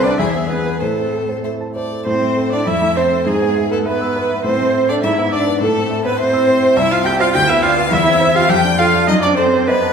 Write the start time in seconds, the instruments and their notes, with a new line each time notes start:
Already playing: grand piano C2 C4 A4, violin B4
0.03 cello D4, grand piano C5, viola D5
0.18 grand piano E2, cello E4, violin G#4, viola E5
0.35 grand piano B3
0.49 cello B3, grand piano G#4, viola B4
0.66 grand piano B4
0.80 grand piano A2, cello A3, viola A4, violin C5
0.98 grand piano C4
1.13 grand piano A4
1.29 grand piano C5
1.44 violin C5, grand piano E5
1.61 grand piano A5
1.75 grand piano C5, violin D5
1.91 grand piano A4
2.06 grand piano A2, cello C4, violin C5, viola C5
2.22 grand piano A3
2.37 grand piano A4
2.52 cello D4, grand piano E4, viola D5, violin D5
2.66 grand piano F2, cello E4, viola E5, violin E5
2.81 grand piano A3
2.96 cello C4, viola C5, grand piano C5, violin C5
3.11 grand piano A4
3.26 grand piano G#2, cello G#3, viola G#4, violin G#4
3.42 grand piano B3
3.56 grand piano E5
3.71 cello A3, viola A4, violin A4, grand piano B4
3.86 cello B3, viola B4, violin B4, grand piano E5
4.01 grand piano E6
4.16 grand piano B4
4.30 grand piano E5
4.44 grand piano A2, cello C4, violin C5, viola C5
4.59 grand piano A3
4.74 grand piano E5
4.89 cello D4, grand piano A4, violin D5, viola D5
5.03 grand piano G#2, cello E4, viola E5, violin E5
5.18 grand piano B3
5.32 cello D4, violin D5, viola D5, grand piano E5
5.47 grand piano B4
5.61 grand piano A2, cello A3, violin A4, viola A4
5.76 grand piano C4
5.91 grand piano E5
6.04 cello B3, violin B4, viola B4, grand piano C5
6.18 cello C4, violin C5, viola C5, grand piano E5
6.33 grand piano E6
6.48 grand piano C5
6.63 grand piano E5
6.77 grand piano C2, cello E4, violin E5, viola E5
6.91 grand piano C4, cello F4, violin F5, viola F5
7.04 cello G4, grand piano E5, violin G5, viola G5
7.19 cello F4, grand piano C5, violin F5, viola F5
7.33 grand piano D2, cello G4, violin G5, viola G5
7.48 grand piano B3, cello E4, violin E5, viola E5
7.62 cello F4, grand piano D5, viola F5, violin F5
7.77 grand piano B4
7.91 grand piano E2, cello E4, viola E5, violin E5
8.06 grand piano C4
8.21 grand piano C5
8.34 cello F4, grand piano G4, viola F5, violin F5
8.49 grand piano F2, cello G4, viola G5, violin G5
8.64 grand piano D4
8.78 cello F4, grand piano A4, viola F5, violin F5
8.94 grand piano D5
9.07 grand piano F#2, cello D#4, viola D#5, violin D#5
9.22 grand piano C4, cello D4, viola D5, violin D5
9.37 cello C4, grand piano A4, violin C5, viola C5
9.53 grand piano C5
9.67 cello B3, viola B4, violin B4, grand piano D#5
9.82 grand piano A5